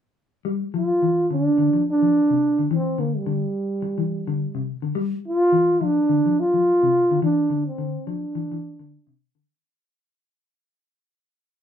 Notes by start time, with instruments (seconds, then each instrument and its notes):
0.45 clean electric guitar G3
0.74 clean electric guitar F3, trombone F4
1.02 clean electric guitar E3
1.31 clean electric guitar D3, trombone D4
1.58 clean electric guitar D3
1.73 clean electric guitar F3
1.90 trombone D4
2.02 clean electric guitar F3
2.30 clean electric guitar C3
2.59 clean electric guitar D3
2.71 clean electric guitar E3, trombone C4
2.98 clean electric guitar D3, trombone A#3
3.17 trombone G3
3.26 clean electric guitar D3
3.82 muted clean electric guitar stroke
3.98 clean electric guitar E3
4.27 clean electric guitar D3
4.55 clean electric guitar C3
4.82 clean electric guitar D3
4.95 clean electric guitar G3
5.28 trombone F4
5.52 clean electric guitar E3
5.81 clean electric guitar F3, trombone D4
6.09 clean electric guitar D3
6.26 clean electric guitar F3
6.40 trombone F4
6.54 clean electric guitar F3
6.83 clean electric guitar C3
7.11 clean electric guitar D3
7.22 clean electric guitar E3, trombone D4
7.50 clean electric guitar D3
7.67 trombone C4
7.78 clean electric guitar D3
8.07 clean electric guitar F3, trombone D4
8.35 clean electric guitar E3
8.52 clean electric guitar E3
8.79 clean electric guitar D3
9.07 clean electric guitar C3
9.35 clean electric guitar D3